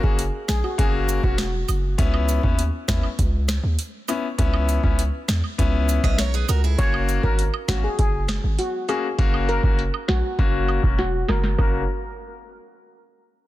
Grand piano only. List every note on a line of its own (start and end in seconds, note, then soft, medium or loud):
0.03 0.20 A#3 medium
0.03 0.20 C#4 medium
0.03 0.20 F#4 medium
0.78 1.20 A#3 medium
0.78 1.20 C#4 medium
0.78 1.20 F#4 loud
1.23 1.40 A#3 medium
1.23 1.40 C#4 medium
1.23 1.40 F#4 medium
1.98 2.40 B3 loud
1.98 2.40 C#4 medium
1.98 2.40 E4 loud
2.43 2.60 B3 medium
2.43 2.60 C#4 medium
2.43 2.60 E4 medium
2.88 3.05 B3 medium
2.88 3.05 C#4 medium
2.88 3.05 E4 medium
4.08 4.25 B3 medium
4.08 4.25 C#4 medium
4.08 4.25 E4 medium
4.38 4.80 B3 medium
4.38 4.80 C#4 medium
4.38 4.80 E4 loud
4.83 5.00 B3 medium
4.83 5.00 C#4 medium
4.83 5.00 E4 medium
5.58 6.00 B3 medium
5.58 6.00 C#4 medium
5.58 6.00 E4 loud
6.04 6.20 B3 medium
6.04 6.20 C#4 medium
6.04 6.21 E4 medium
6.79 7.20 A#3 loud
6.79 7.20 C#4 medium
6.79 7.20 F#4 loud
7.23 7.40 A#3 medium
7.23 7.40 C#4 medium
7.23 7.40 F#4 medium
7.68 7.85 A#3 medium
7.68 7.85 C#4 medium
7.68 7.85 F#4 medium
8.88 9.05 A#3 medium
8.88 9.05 C#4 medium
8.88 9.05 F#4 medium
9.18 9.60 A#3 loud
9.18 9.60 C#4 medium
9.18 9.60 F#4 loud
9.64 9.80 A#3 medium
9.64 9.80 C#4 medium
9.64 9.81 F#4 medium
10.39 10.80 A#3 loud
10.39 10.80 C#4 medium
10.39 10.80 F#4 loud
10.84 11.00 A#3 medium
10.84 11.00 C#4 medium
10.84 11.01 F#4 medium
11.58 11.81 A#3 medium
11.58 11.81 C#4 medium
11.58 11.81 F#4 loud